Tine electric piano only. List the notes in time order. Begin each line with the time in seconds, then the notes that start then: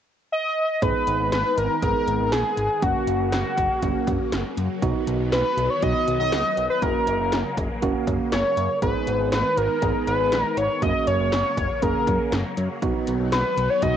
0.82 B3 D#4 G#4
1.82 B3 D#4 G#4
2.82 A#3 C#4 F#4
3.82 A#3 C#4 F#4
4.82 B3 D#4 F#4
5.82 B3 D#4 F#4
6.82 A#3 C#4 F#4
7.82 A#3 C#4 F#4
8.82 B3 D#4 G#4
9.82 B3 D#4 G#4
10.82 A#3 C#4 F#4
11.82 A#3 C#4 G#4
12.82 B3 D#4 F#4
13.82 B3 D#4 F#4